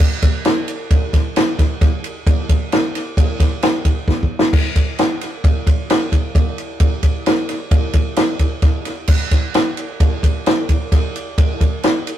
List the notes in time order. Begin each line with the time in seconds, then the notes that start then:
0.00 kick, crash
0.22 kick, ride
0.45 snare, ride
0.68 ride
0.91 kick, ride
1.13 kick, snare, ride
1.36 snare, ride
1.59 kick, snare, ride
1.81 kick, snare, ride
2.04 ride
2.27 kick, ride
2.49 kick, ride
2.72 snare, ride
2.95 snare, ride
3.17 kick, ride
3.40 kick, snare, ride
3.62 snare, ride
3.85 kick, ride
4.08 kick, snare
4.23 kick
4.39 snare
4.53 kick, crash
4.76 kick, ride
4.98 snare, ride
5.21 snare, ride
5.44 kick, ride
5.67 kick, ride
5.90 snare, ride
6.12 kick, ride
6.35 kick, ride
6.58 ride
6.80 kick, ride
7.03 kick, ride
7.26 snare, ride
7.49 snare, ride
7.71 kick, ride
7.93 kick, ride
8.16 snare, ride
8.39 kick, ride
8.62 kick, snare, ride
8.85 snare, ride
9.08 kick, crash
9.31 kick, snare, ride
9.54 snare, ride
9.77 ride
10.00 kick, ride
10.23 kick, ride
10.46 snare, ride
10.69 kick, ride
10.92 kick, snare, ride
11.16 ride
11.38 kick, ride
11.61 kick, ride
11.83 snare, ride
12.07 ride